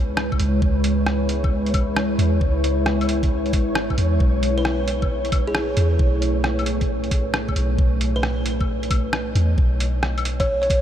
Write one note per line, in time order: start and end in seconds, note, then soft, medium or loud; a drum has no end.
0.00 0.39 C#2 loud
0.00 4.17 G#3 medium
0.00 10.82 E4 medium
0.00 10.82 B4 medium
0.00 7.75 C#5 medium
0.00 10.82 C#5 medium
0.17 cross-stick loud
0.32 kick medium
0.32 claves soft
0.40 0.61 C#2 medium
0.40 closed hi-hat medium
0.62 2.18 C#2 loud
0.62 kick loud
0.84 closed hi-hat medium
1.06 cross-stick loud
1.29 closed hi-hat medium
1.44 kick loud
1.44 claves soft
1.66 closed hi-hat soft
1.74 kick loud
1.74 closed hi-hat medium
1.74 claves medium
1.96 cross-stick loud
2.19 2.40 E2 medium
2.19 closed hi-hat medium
2.41 3.55 C#2 medium
2.41 kick loud
2.64 closed hi-hat medium
2.86 cross-stick loud
3.01 closed hi-hat soft
3.01 claves medium
3.09 closed hi-hat medium
3.23 kick loud
3.23 closed hi-hat soft
3.46 closed hi-hat soft
3.53 3.97 G#1 loud
3.53 kick loud
3.53 closed hi-hat soft
3.75 cross-stick loud
3.90 kick medium
3.90 claves soft
3.98 4.19 E2 loud
3.98 closed hi-hat soft
4.20 5.76 B1 medium
4.20 10.82 A3 medium
4.20 kick loud
4.43 closed hi-hat medium
4.58 4.81 B4 medium
4.65 cross-stick loud
4.88 closed hi-hat soft
5.02 kick medium
5.02 claves soft
5.25 closed hi-hat soft
5.32 kick loud
5.32 closed hi-hat medium
5.32 claves medium
5.47 5.77 G#4 medium
5.55 cross-stick loud
5.77 5.98 E2 medium
5.77 closed hi-hat medium
5.99 7.55 B1 medium
5.99 kick loud
6.22 closed hi-hat soft
6.44 cross-stick loud
6.59 closed hi-hat soft
6.59 claves medium
6.66 closed hi-hat medium
6.81 kick medium
6.81 closed hi-hat soft
7.04 closed hi-hat soft
7.11 kick loud
7.11 closed hi-hat medium
7.34 cross-stick loud
7.49 kick medium
7.49 claves soft
7.56 7.77 B1 medium
7.56 closed hi-hat soft
7.78 9.34 B1 medium
7.78 10.82 D#5 loud
7.78 kick loud
8.01 closed hi-hat medium
8.16 8.39 B4 medium
8.23 cross-stick medium
8.46 closed hi-hat medium
8.61 kick medium
8.61 claves soft
8.83 closed hi-hat soft
8.91 kick loud
8.91 closed hi-hat medium
8.91 claves medium
9.13 cross-stick loud
9.35 9.56 E2 medium
9.35 closed hi-hat soft
9.58 10.82 B1 loud
9.58 kick loud
9.80 closed hi-hat medium
10.03 cross-stick loud
10.18 closed hi-hat soft
10.18 claves medium
10.25 closed hi-hat medium
10.40 10.59 C#5 medium
10.40 kick medium
10.40 closed hi-hat soft
10.40 claves soft
10.62 10.82 C#5 medium
10.62 closed hi-hat soft
10.70 kick loud
10.70 closed hi-hat medium